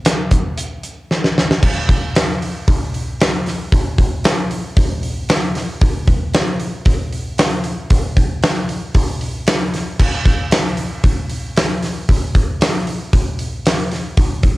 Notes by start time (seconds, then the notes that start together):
0.05 snare, closed hi-hat
0.31 kick, closed hi-hat
0.58 closed hi-hat
0.83 closed hi-hat
1.11 snare
1.24 snare
1.38 snare
1.51 snare
1.63 kick, crash
1.89 kick, open hi-hat
2.15 snare, open hi-hat
2.42 open hi-hat
2.68 kick, open hi-hat
2.94 open hi-hat
3.20 snare, open hi-hat
3.46 snare, open hi-hat
3.72 kick, open hi-hat
3.98 kick, open hi-hat
4.24 snare, open hi-hat
4.51 open hi-hat
4.77 kick, open hi-hat
5.03 open hi-hat
5.29 snare, open hi-hat
5.55 snare, open hi-hat
5.81 kick, open hi-hat
6.07 kick, open hi-hat
6.34 snare, open hi-hat
6.60 open hi-hat
6.85 kick, open hi-hat
7.12 open hi-hat
7.38 snare, open hi-hat
7.64 open hi-hat
7.90 kick, open hi-hat
8.17 kick, open hi-hat
8.42 snare, open hi-hat
8.69 open hi-hat
8.95 kick, open hi-hat
9.21 open hi-hat
9.47 snare, open hi-hat
9.74 snare, open hi-hat
9.99 kick, crash
10.26 kick, open hi-hat
10.51 snare, open hi-hat
10.77 open hi-hat
11.04 kick, open hi-hat
11.30 open hi-hat
11.57 snare, open hi-hat
11.83 snare, open hi-hat
12.09 kick, open hi-hat
12.35 kick, open hi-hat
12.61 snare, open hi-hat
12.87 open hi-hat
13.13 kick, open hi-hat
13.39 open hi-hat
13.66 snare, open hi-hat
13.91 snare, open hi-hat
14.17 kick, open hi-hat
14.43 kick, open hi-hat